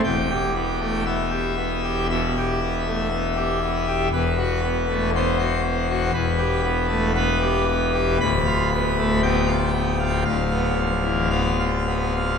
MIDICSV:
0, 0, Header, 1, 2, 480
1, 0, Start_track
1, 0, Tempo, 1025641
1, 20, Time_signature, 4, 2, 24, 8
1, 1459, Tempo, 1008403
1, 3379, Tempo, 1039861
1, 4819, Tempo, 1084991
1, 5753, End_track
2, 0, Start_track
2, 0, Title_t, "Pipe organ"
2, 0, Program_c, 0, 19
2, 19, Note_on_c, 0, 40, 64
2, 20, Note_on_c, 0, 28, 66
2, 20, Note_on_c, 0, 79, 105
2, 140, Note_on_c, 0, 67, 54
2, 249, Note_off_c, 0, 67, 0
2, 259, Note_on_c, 0, 59, 55
2, 368, Note_off_c, 0, 59, 0
2, 378, Note_on_c, 0, 57, 46
2, 482, Note_off_c, 0, 57, 0
2, 488, Note_off_c, 0, 79, 0
2, 496, Note_on_c, 0, 59, 53
2, 496, Note_on_c, 0, 76, 90
2, 606, Note_off_c, 0, 59, 0
2, 610, Note_on_c, 0, 67, 54
2, 723, Note_off_c, 0, 67, 0
2, 734, Note_on_c, 0, 59, 50
2, 845, Note_off_c, 0, 59, 0
2, 859, Note_on_c, 0, 67, 55
2, 966, Note_off_c, 0, 76, 0
2, 969, Note_off_c, 0, 67, 0
2, 982, Note_on_c, 0, 47, 50
2, 984, Note_on_c, 0, 76, 102
2, 1090, Note_off_c, 0, 47, 0
2, 1110, Note_on_c, 0, 67, 52
2, 1214, Note_off_c, 0, 67, 0
2, 1225, Note_on_c, 0, 59, 62
2, 1330, Note_off_c, 0, 59, 0
2, 1342, Note_on_c, 0, 57, 54
2, 1442, Note_off_c, 0, 57, 0
2, 1457, Note_on_c, 0, 59, 65
2, 1564, Note_off_c, 0, 59, 0
2, 1577, Note_on_c, 0, 67, 64
2, 1684, Note_off_c, 0, 67, 0
2, 1704, Note_on_c, 0, 59, 63
2, 1808, Note_off_c, 0, 59, 0
2, 1818, Note_on_c, 0, 67, 64
2, 1917, Note_off_c, 0, 40, 0
2, 1917, Note_off_c, 0, 76, 0
2, 1918, Note_off_c, 0, 28, 0
2, 1919, Note_off_c, 0, 67, 0
2, 1941, Note_on_c, 0, 28, 78
2, 1941, Note_on_c, 0, 71, 102
2, 1944, Note_on_c, 0, 40, 78
2, 2061, Note_on_c, 0, 66, 67
2, 2166, Note_off_c, 0, 66, 0
2, 2183, Note_on_c, 0, 59, 63
2, 2287, Note_off_c, 0, 59, 0
2, 2303, Note_on_c, 0, 57, 50
2, 2402, Note_off_c, 0, 57, 0
2, 2404, Note_off_c, 0, 71, 0
2, 2428, Note_on_c, 0, 59, 68
2, 2431, Note_on_c, 0, 72, 113
2, 2531, Note_off_c, 0, 59, 0
2, 2541, Note_on_c, 0, 66, 75
2, 2647, Note_off_c, 0, 66, 0
2, 2660, Note_on_c, 0, 59, 57
2, 2766, Note_off_c, 0, 59, 0
2, 2782, Note_on_c, 0, 66, 67
2, 2881, Note_off_c, 0, 28, 0
2, 2882, Note_off_c, 0, 40, 0
2, 2882, Note_off_c, 0, 66, 0
2, 2890, Note_off_c, 0, 72, 0
2, 2896, Note_on_c, 0, 71, 100
2, 2897, Note_on_c, 0, 28, 79
2, 2898, Note_on_c, 0, 40, 81
2, 3013, Note_on_c, 0, 67, 66
2, 3122, Note_off_c, 0, 67, 0
2, 3138, Note_on_c, 0, 59, 71
2, 3245, Note_off_c, 0, 59, 0
2, 3253, Note_on_c, 0, 57, 67
2, 3358, Note_off_c, 0, 57, 0
2, 3363, Note_off_c, 0, 71, 0
2, 3378, Note_on_c, 0, 59, 73
2, 3381, Note_on_c, 0, 71, 117
2, 3485, Note_off_c, 0, 59, 0
2, 3500, Note_on_c, 0, 67, 78
2, 3609, Note_off_c, 0, 67, 0
2, 3625, Note_on_c, 0, 59, 71
2, 3734, Note_off_c, 0, 59, 0
2, 3746, Note_on_c, 0, 67, 71
2, 3849, Note_off_c, 0, 28, 0
2, 3849, Note_off_c, 0, 40, 0
2, 3849, Note_off_c, 0, 67, 0
2, 3854, Note_off_c, 0, 71, 0
2, 3866, Note_on_c, 0, 83, 127
2, 3867, Note_on_c, 0, 38, 78
2, 3869, Note_on_c, 0, 26, 85
2, 3985, Note_on_c, 0, 65, 68
2, 4093, Note_off_c, 0, 65, 0
2, 4108, Note_on_c, 0, 59, 68
2, 4213, Note_off_c, 0, 59, 0
2, 4223, Note_on_c, 0, 57, 55
2, 4324, Note_off_c, 0, 57, 0
2, 4327, Note_off_c, 0, 83, 0
2, 4337, Note_on_c, 0, 59, 67
2, 4338, Note_on_c, 0, 79, 118
2, 4444, Note_off_c, 0, 59, 0
2, 4449, Note_on_c, 0, 65, 71
2, 4559, Note_off_c, 0, 65, 0
2, 4569, Note_on_c, 0, 59, 55
2, 4679, Note_off_c, 0, 59, 0
2, 4690, Note_on_c, 0, 65, 64
2, 4800, Note_off_c, 0, 65, 0
2, 4801, Note_off_c, 0, 79, 0
2, 4802, Note_off_c, 0, 26, 0
2, 4802, Note_off_c, 0, 38, 0
2, 4810, Note_on_c, 0, 77, 91
2, 4811, Note_on_c, 0, 26, 60
2, 4811, Note_on_c, 0, 38, 59
2, 4930, Note_on_c, 0, 59, 61
2, 5037, Note_off_c, 0, 59, 0
2, 5047, Note_on_c, 0, 53, 61
2, 5155, Note_off_c, 0, 53, 0
2, 5159, Note_on_c, 0, 52, 51
2, 5266, Note_off_c, 0, 52, 0
2, 5266, Note_off_c, 0, 77, 0
2, 5275, Note_on_c, 0, 59, 52
2, 5275, Note_on_c, 0, 77, 99
2, 5389, Note_off_c, 0, 59, 0
2, 5401, Note_on_c, 0, 65, 57
2, 5514, Note_off_c, 0, 65, 0
2, 5528, Note_on_c, 0, 59, 57
2, 5639, Note_off_c, 0, 59, 0
2, 5652, Note_on_c, 0, 65, 52
2, 5753, Note_off_c, 0, 26, 0
2, 5753, Note_off_c, 0, 38, 0
2, 5753, Note_off_c, 0, 65, 0
2, 5753, Note_off_c, 0, 77, 0
2, 5753, End_track
0, 0, End_of_file